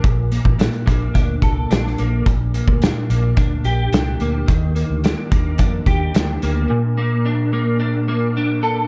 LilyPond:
<<
  \new Staff \with { instrumentName = "Clean electric guitar" } { \time 4/4 \key bes \major \tempo 4 = 108 <bes, bes d' a'>8 bes8 d'8 bes8 d'8 a'8 d'8 bes8 | bes,8 bes8 d'8 bes8 d'8 g'8 d'8 bes8 | ees8 bes8 d'8 bes8 d'8 g'8 d'8 bes8 | bes,8 bes8 d'8 bes8 d'8 bes8 d'8 a'8 | }
  \new Staff \with { instrumentName = "Fingered electric bass" } { \clef bass \time 4/4 \key bes \major bes,,8. a,,8 r16 bes,,8 d,8 c,8 bes,,8 bes,,8 | bes,,8. d,8 r16 bes,,8 d,8 bes,,8 c,8 d,8 | ees,8. d,8 r16 ees,8 f,8 ees,8 d,8 d,8 | r1 | }
  \new DrumStaff \with { instrumentName = "Drums" } \drummode { \time 4/4 <hh bd>8 hh16 bd16 <hh sn>16 hh16 <hh bd>8 <hh bd>8 <hh bd>8 <hh sn>16 sn16 hh8 | <hh bd>8 hh16 bd16 <hh sn>8 hh8 <hh bd>8 hh8 <hh sn>8 hh8 | <hh bd>8 hh8 <hh sn>8 <hh bd>8 <hh bd>8 <hh bd>8 <hh sn>8 hh8 | r4 r4 r4 r4 | }
>>